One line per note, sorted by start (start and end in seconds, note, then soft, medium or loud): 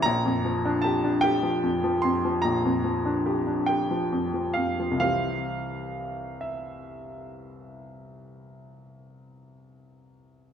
0.02 2.40 A#1 medium
0.02 0.83 A#5 loud
0.25 0.57 F2 soft
0.45 0.76 F3 soft
0.65 0.97 D4 medium
0.82 1.16 G4 soft
0.82 1.23 A5 medium
1.04 1.36 D4 medium
1.21 1.56 G4 medium
1.21 2.03 G5 medium
1.43 1.76 F3 soft
1.63 1.96 F2 soft
1.84 2.16 F3 medium
2.02 2.36 F2 soft
2.02 2.43 C6 medium
2.25 2.56 F3 soft
2.42 4.99 A#1 soft
2.42 3.68 A#5 medium
2.65 2.97 F2 soft
2.84 3.17 F3 soft
3.05 3.39 D4 soft
3.26 3.60 G4 soft
3.47 3.82 D4 soft
3.66 4.04 G4 soft
3.66 4.56 G5 medium
3.91 4.26 F3 soft
4.12 4.48 F2 soft
4.34 4.70 F3 soft
4.54 4.93 F2 soft
4.54 4.98 F5 medium
4.80 5.03 F3 soft
4.91 10.49 C2 soft
5.00 10.53 E3 soft
5.00 10.53 C4 soft
5.00 10.53 G4 soft
5.00 6.43 F5 medium
6.41 10.10 E5 soft